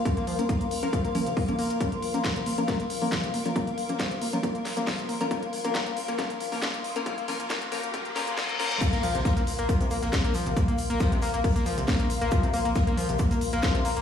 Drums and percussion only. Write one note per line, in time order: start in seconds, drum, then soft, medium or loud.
0.05 kick loud
0.05 closed hi-hat medium
0.17 closed hi-hat medium
0.27 open hi-hat loud
0.39 closed hi-hat medium
0.49 kick loud
0.49 closed hi-hat medium
0.61 closed hi-hat soft
0.71 open hi-hat loud
0.83 closed hi-hat medium
0.93 kick loud
0.93 closed hi-hat medium
1.05 closed hi-hat medium
1.15 open hi-hat loud
1.26 closed hi-hat medium
1.37 kick loud
1.37 open hi-hat medium
1.48 closed hi-hat medium
1.59 open hi-hat loud
1.70 closed hi-hat medium
1.81 kick loud
1.81 closed hi-hat medium
1.92 closed hi-hat medium
2.02 open hi-hat loud
2.14 closed hi-hat medium
2.24 kick loud
2.24 snare loud
2.24 closed hi-hat medium
2.36 closed hi-hat soft
2.46 open hi-hat loud
2.58 closed hi-hat soft
2.68 kick loud
2.68 snare medium
2.68 closed hi-hat medium
2.80 closed hi-hat medium
2.90 open hi-hat loud
3.02 open hi-hat medium
3.12 kick loud
3.12 snare loud
3.12 closed hi-hat medium
3.24 closed hi-hat medium
3.34 open hi-hat loud
3.45 closed hi-hat soft
3.56 kick loud
3.56 closed hi-hat medium
3.67 closed hi-hat medium
3.78 open hi-hat loud
3.89 closed hi-hat soft
3.99 kick loud
3.99 snare loud
3.99 closed hi-hat medium
4.11 closed hi-hat medium
4.21 open hi-hat loud
4.33 closed hi-hat medium
4.43 kick loud
4.43 closed hi-hat medium
4.55 closed hi-hat medium
4.65 snare medium
4.65 open hi-hat loud
4.77 closed hi-hat medium
4.87 kick loud
4.87 snare loud
4.87 open hi-hat medium
4.99 closed hi-hat soft
5.09 open hi-hat loud
5.21 closed hi-hat soft
5.31 kick loud
5.31 closed hi-hat medium
5.43 closed hi-hat medium
5.53 open hi-hat loud
5.64 closed hi-hat medium
5.75 kick loud
5.75 snare loud
5.75 closed hi-hat medium
5.86 closed hi-hat medium
5.97 open hi-hat loud
6.08 closed hi-hat medium
6.19 kick loud
6.19 snare medium
6.19 closed hi-hat medium
6.30 closed hi-hat medium
6.40 open hi-hat loud
6.52 open hi-hat medium
6.62 kick loud
6.62 snare loud
6.62 closed hi-hat medium
6.74 closed hi-hat medium
6.84 open hi-hat loud
6.96 closed hi-hat medium
7.06 kick loud
7.06 closed hi-hat loud
7.18 closed hi-hat medium
7.28 open hi-hat loud
7.40 closed hi-hat medium
7.50 kick loud
7.50 snare loud
7.50 closed hi-hat loud
7.62 closed hi-hat medium
7.72 open hi-hat loud
7.83 closed hi-hat medium
7.94 kick loud
7.94 closed hi-hat medium
8.05 closed hi-hat medium
8.16 snare medium
8.16 open hi-hat loud
8.27 closed hi-hat medium
8.38 kick loud
8.38 snare loud
8.38 open hi-hat medium
8.49 closed hi-hat medium
8.59 open hi-hat loud
8.71 closed hi-hat medium
8.81 kick loud
8.81 closed hi-hat loud
8.81 crash loud
8.81 shaker medium
8.93 closed hi-hat medium
9.03 open hi-hat loud
9.03 shaker medium
9.15 closed hi-hat medium
9.25 kick loud
9.25 snare loud
9.25 closed hi-hat loud
9.25 shaker medium
9.37 closed hi-hat medium
9.47 open hi-hat loud
9.47 shaker medium
9.59 closed hi-hat medium
9.69 kick loud
9.69 closed hi-hat loud
9.69 shaker medium
9.81 closed hi-hat medium
9.81 closed hi-hat soft
9.91 open hi-hat loud
9.91 shaker medium
10.02 snare soft
10.02 closed hi-hat medium
10.13 kick loud
10.13 snare loud
10.13 closed hi-hat loud
10.13 shaker medium
10.24 closed hi-hat medium
10.34 open hi-hat loud
10.34 shaker medium
10.46 closed hi-hat medium
10.57 kick loud
10.57 closed hi-hat loud
10.57 shaker medium
10.68 closed hi-hat medium
10.78 open hi-hat loud
10.78 shaker medium
10.90 closed hi-hat medium
11.00 kick loud
11.00 snare loud
11.00 closed hi-hat loud
11.00 shaker medium
11.12 closed hi-hat medium
11.22 snare soft
11.22 open hi-hat loud
11.22 shaker medium
11.34 closed hi-hat medium
11.44 kick loud
11.44 closed hi-hat loud
11.44 open hi-hat medium
11.56 closed hi-hat soft
11.56 closed hi-hat medium
11.66 open hi-hat loud
11.66 shaker medium
11.78 closed hi-hat medium
11.88 kick loud
11.88 snare loud
11.88 open hi-hat medium
11.88 shaker medium
12.00 closed hi-hat medium
12.10 open hi-hat loud
12.10 shaker medium
12.21 closed hi-hat medium
12.31 kick loud
12.31 closed hi-hat loud
12.31 shaker medium
12.43 closed hi-hat medium
12.54 open hi-hat loud
12.54 shaker medium
12.65 closed hi-hat medium
12.75 kick loud
12.75 snare loud
12.75 closed hi-hat loud
12.75 shaker medium
12.87 closed hi-hat medium
12.97 open hi-hat loud
12.97 shaker medium
13.09 closed hi-hat medium
13.19 kick loud
13.19 closed hi-hat loud
13.19 shaker medium
13.31 closed hi-hat medium
13.31 closed hi-hat soft
13.41 open hi-hat loud
13.41 shaker medium
13.52 snare soft
13.52 closed hi-hat medium
13.63 kick loud
13.63 snare loud
13.63 closed hi-hat loud
13.63 shaker medium
13.75 closed hi-hat medium
13.85 open hi-hat loud
13.85 shaker medium
13.97 closed hi-hat medium